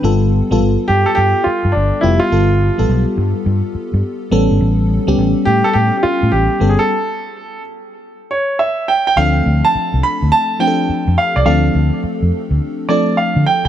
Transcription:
X:1
M:4/4
L:1/16
Q:"Swing 16ths" 1/4=105
K:Ddor
V:1 name="Grand piano"
z6 G A G2 F2 D2 E F- | F4- F z8 z3 | z6 G A G3/2 G/2 F2 G2- G/2 ^G/2 A- | A4- A z4 z ^c2 e2 g g |
f3 a3 b2 a2 g4 f d | f4 z6 d2 f2 g g |]
V:2 name="FM electric piano"
[G,B,FA]2 z [G,B,FA]4- [G,B,FA] z6 [G,B,FG] z | [G,B,FA]2 z [G,B,FA]4- [G,B,FA] z6 [G,B,^CA]2- | [G,B,^CA]2 z [G,B,CG]4- [G,B,CG] z6 [G,B,CA] z | z16 |
[F,A,CDA]4- [F,A,CDA] z4 z [F,A,CDGA]4 z2 | [F,A,CDA]4- [F,A,CDA] z4 z [F,A,CDA]4 z2 |]
V:3 name="Fingered electric bass" clef=bass
G,,,3 A,,, G,,, z G,, z G,, z2 G,, G,,, z F,,, z | G,,,3 A,,, B,,, z G,, z G,, z2 G,, z2 A,,, G,,, | A,,,3 ^C,, A,,, z A,, z A,, z2 A,, A,,, z G,,, z | z16 |
D,,2 D,, z2 C,, z D,, z4 z F,, z C,, | D,,2 D,, z2 F,, z D,, z4 z D, z B,,, |]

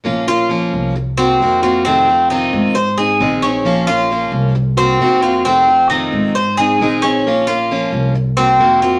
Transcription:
X:1
M:4/4
L:1/8
Q:1/4=134
K:Bbm
V:1 name="Cuban tres"
z F2 z2 C2 F | C2 E2 c A2 D- | D F2 z2 C2 F | C2 E2 c A2 D- |
D F2 z2 C2 F |]
V:2 name="Steel-string acoustic guitar"
[F,B,DF] [B,DF] [F,B,DF]2 z [B,CG] [C,E,B,CG] [B,CG] | [C,E,=A,CF] [A,CF] [C,E,A,CF]2 z [CE_A] [E,_A,CEA] [CEA] | [F,B,DF] [B,DF] [F,B,DF]2 z [B,CG] [C,E,B,CG] [B,CG] | [C,E,=A,CF] [A,CF] [C,E,A,CF]2 z [CE_A] [E,_A,CEA] [CEA] |
[F,B,DF] [B,DF] [F,B,DF]2 z [B,CG] [C,E,B,CG] [B,CG] |]
V:3 name="Upright bass" clef=bass
B,,,3 C,,3 F,,2- | F,,3 A,,3 B,,,2- | B,,,3 C,,3 F,,2- | F,,3 A,,3 B,,,2- |
B,,,3 C,,3 F,,2 |]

